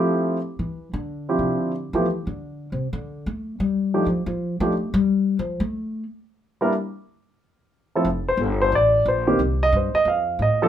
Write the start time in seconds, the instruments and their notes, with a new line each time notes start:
Already playing: grand piano F3 A3 C4 E4 G4
0.59 upright bass E3
0.93 upright bass D3
1.29 grand piano F3 C4 D4 E4 G4
1.39 upright bass C3
1.60 upright bass D3
1.93 upright bass E3, grand piano F3 A3 B3 E4 G4
2.27 upright bass D3
2.72 upright bass C3
2.93 upright bass D3
3.26 upright bass A3
3.60 upright bass G3
3.94 grand piano F3 A3 D4 D#4 G4
4.06 upright bass F3
4.26 upright bass F3
4.60 grand piano F3 A3 D4 D#4 G4, upright bass A3
4.94 upright bass G3
5.39 upright bass F3
5.60 upright bass A3
6.61 grand piano G3 A#3 D4 E4 A#4
7.95 grand piano F3 A3 C4 E4 A4
8.05 upright bass F1
8.28 grand piano C5
8.37 upright bass G1
8.41 grand piano A4
8.62 grand piano C5
8.72 upright bass A1, grand piano D5
9.06 upright bass A#1, grand piano C5
9.27 grand piano D#3 A#3 C4 G4
9.39 upright bass C2
9.63 grand piano D#5
9.72 upright bass G2, grand piano C5
9.94 grand piano D#5, muted upright bass stroke
10.05 upright bass F2, grand piano F5
10.39 upright bass A2, grand piano D#5
10.62 grand piano F3 A#3 D4 A4